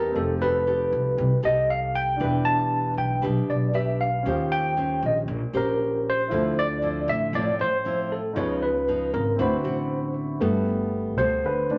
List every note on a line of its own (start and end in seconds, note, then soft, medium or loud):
0.00 0.11 E2 medium
0.00 0.12 E3 medium
0.00 0.12 C4 soft
0.00 0.36 D#4 medium
0.00 0.17 E4 soft
0.00 0.16 G4 soft
0.00 0.37 G4 medium
0.00 0.37 A4 medium
0.00 0.16 A#4 medium
0.00 0.17 B4 soft
0.12 0.88 F1 medium
0.12 1.15 F3 medium
0.12 2.15 C4 soft
0.12 2.16 D#4 soft
0.12 2.17 G4 soft
0.16 0.42 A4 medium
0.16 2.18 A4 medium
0.41 0.62 D#4 medium
0.41 0.63 G4 medium
0.41 0.63 A4 medium
0.41 1.40 B4 medium
0.67 1.40 D#4 soft
0.67 1.40 G4 soft
0.67 1.40 A4 medium
0.92 1.16 C2 medium
1.17 1.30 C2 loud
1.17 2.18 C3 medium
1.43 2.16 C2 medium
1.43 2.16 D#4 medium
1.43 2.16 G4 medium
1.43 2.16 A4 medium
1.43 1.71 D#5 medium
1.70 1.94 F5 medium
1.95 2.43 G5 loud
2.16 3.20 E3 medium
2.16 4.20 D4 soft
2.16 2.89 D4 medium
2.16 4.21 E4 soft
2.16 2.89 G4 medium
2.20 2.94 E1 loud
2.20 4.22 G4 soft
2.20 2.90 B4 medium
2.20 4.23 B4 medium
2.45 2.93 A5 loud
2.97 3.21 B1 medium
2.97 3.22 G5 medium
3.22 3.36 B1 medium
3.22 4.23 B2 medium
3.22 3.70 D4 medium
3.22 3.70 G4 medium
3.22 3.70 B4 medium
3.50 4.23 B1 medium
3.50 3.76 D5 medium
3.74 4.09 D4 medium
3.74 4.09 G4 medium
3.74 4.09 B4 medium
3.74 4.01 E5 medium
4.01 4.53 F5 medium
4.23 4.99 D#2 medium
4.23 5.26 D#3 medium
4.23 6.26 C#4 soft
4.23 4.73 C#4 medium
4.23 6.27 F4 soft
4.23 4.73 G4 medium
4.23 6.28 G4 soft
4.23 4.73 C5 medium
4.29 6.29 C5 medium
4.52 5.05 G5 loud
4.77 5.28 C#4 medium
4.77 5.28 G4 soft
4.77 5.29 C5 medium
5.02 5.27 A#1 medium
5.02 5.17 D#5 medium
5.28 5.40 A#1 loud
5.28 6.28 A#2 medium
5.53 6.27 A#1 medium
5.53 6.27 C#4 medium
5.53 6.27 G4 medium
5.53 6.08 A#4 medium
5.53 6.27 C5 medium
6.10 6.60 C5 medium
6.28 7.04 D2 medium
6.28 7.31 D3 medium
6.28 6.64 F3 medium
6.28 6.64 C4 soft
6.28 8.31 E4 soft
6.28 8.32 F4 soft
6.32 6.65 E4 medium
6.32 8.33 A4 soft
6.32 8.34 C5 medium
6.59 7.11 D5 loud
6.82 7.30 F3 medium
6.82 7.30 C4 medium
6.82 7.30 E4 medium
7.08 7.32 A1 loud
7.08 7.35 E5 loud
7.33 7.45 A1 loud
7.33 8.34 A2 medium
7.33 7.67 F3 medium
7.33 7.67 C4 soft
7.33 7.67 E4 medium
7.33 7.58 D5 loud
7.59 8.32 A1 medium
7.59 8.13 C5 loud
7.85 8.20 F3 medium
7.85 8.20 C4 medium
7.85 8.20 E4 medium
8.12 8.38 A4 medium
8.33 9.09 C#2 medium
8.33 9.36 C#3 medium
8.33 8.69 F3 medium
8.33 8.69 B3 medium
8.33 9.35 D#4 soft
8.33 8.70 D#4 medium
8.33 9.36 F4 soft
8.33 9.37 G#4 soft
8.37 9.38 B4 medium
8.37 8.63 C#5 medium
8.63 9.10 B4 medium
8.88 9.22 F3 soft
8.88 9.23 B3 medium
8.88 9.23 D#4 medium
9.14 9.37 G#1 medium
9.14 9.37 A#4 medium
9.36 9.51 D2 loud
9.36 10.39 D3 medium
9.36 10.38 C4 soft
9.36 9.61 C4 medium
9.36 10.39 E4 soft
9.36 9.61 F#4 medium
9.36 9.61 B4 medium
9.40 10.40 F#4 soft
9.40 10.13 C5 medium
9.40 10.41 B5 medium
9.64 10.38 A1 medium
9.64 10.37 C4 medium
9.64 10.38 F#4 medium
10.40 11.18 G1 loud
10.40 11.41 G3 medium
10.40 11.78 A3 soft
10.40 11.78 B3 soft
10.40 10.92 B3 soft
10.40 10.92 F#4 medium
10.40 10.93 A4 medium
11.18 11.42 D2 medium
11.18 11.78 B3 medium
11.18 11.78 F#4 medium
11.18 11.78 A4 medium
11.18 11.43 C5 medium
11.44 11.78 D3 soft
11.44 11.70 B4 medium
11.70 11.78 D2 medium
11.70 11.78 D4 soft